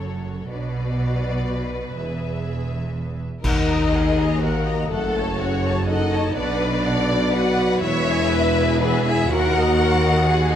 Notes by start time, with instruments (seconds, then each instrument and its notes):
Already playing: double bass section F#1, cello section F#2, viola section F#4, violin section A4 C#5
0.51 double bass section B1, cello section B2, french horn section F#3 D4, viola section F#4, violin section B4 D5
1.96 double bass section E1, cello section E2, french horn section G#3 E4, viola section G#4, violin section E5
3.43 tuba D#2, cello section D#2, double bass section D#2, french horn section D#4, violin section A#4 D#5, viola section A#4 F#5, concert bass drum, crash
3.70 viola section D#5 A#5
3.92 violin section G#4, viola section A#4 F#5
4.18 viola section D#5 A#5
4.41 french horn section A#3, violin section F#4 A#4, viola section A#4 F#5
4.67 viola section D#5 A#5
4.89 tuba F#1, double bass section F#1, cello section F#2, french horn section A3, violin section A4, viola section A4 F#5
5.16 viola section C#5 A5
5.37 french horn section C#4, violin section F#4 C#5, viola section A4
5.41 viola section F#5
5.65 viola section C#5 A5
5.86 french horn section D#4, violin section A4 D#5, viola section A4 F#5
6.13 viola section C#5 A5
6.34 tuba B1, double bass section B1, cello section B2, french horn section D4, violin section B4 D5, viola section D5 F#5
6.62 viola section B4 D5
6.83 violin section D5, viola section D5 F#5
7.10 viola section B4 D5
7.32 french horn section F#4, violin section B4 F#5, viola section D5 F#5
7.59 viola section B4 D5
7.81 tuba E1, double bass section E1, cello section E2, french horn section E4, viola section B4 E5, violin section C#5 E5
8.08 viola section G#4 G#5
8.31 violin section B4, viola section B4 E5
8.58 viola section G#4 G#5
8.79 french horn section B3, violin section G#4 B4, viola section B4 E5
9.04 french horn section E4, viola section G#4 G#5, violin section E5
9.28 cello section D#2, tuba D#2, double bass section D#2, french horn section F#4, violin section A#4 F#5
9.32 viola section F#4 F#5
9.56 viola section A#4 D#5
9.79 viola section F#4 F#5, violin section A#4
10.04 viola section A#4 D#5
10.26 viola section F#4 F#5, violin section G#4
10.52 viola section A#4 D#5